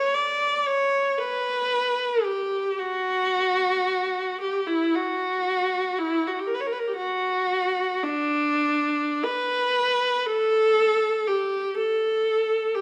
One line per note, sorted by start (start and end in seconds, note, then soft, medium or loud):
0.00 0.15 C#5 medium
0.14 0.65 D5 medium
0.66 1.18 C#5 medium
1.18 2.23 B4 medium
2.23 2.78 G4 medium
2.79 4.40 F#4 medium
4.41 4.66 G4 medium
4.67 4.93 E4 medium
4.95 5.98 F#4 medium
5.98 6.27 E4 medium
6.27 6.38 F#4 medium
6.39 6.47 G4 medium
6.47 6.54 A#4 medium
6.54 6.60 B4 medium
6.61 6.66 C#5 medium
6.66 6.72 A#4 medium
6.72 6.79 B4 medium
6.79 6.87 A#4 medium
6.88 6.96 G4 medium
6.96 8.00 F#4 medium
8.02 9.23 D4 medium
9.23 10.26 B4 medium
10.26 11.27 A4 medium
11.27 11.77 G4 medium
11.77 12.73 A4 medium
12.75 12.81 G4 medium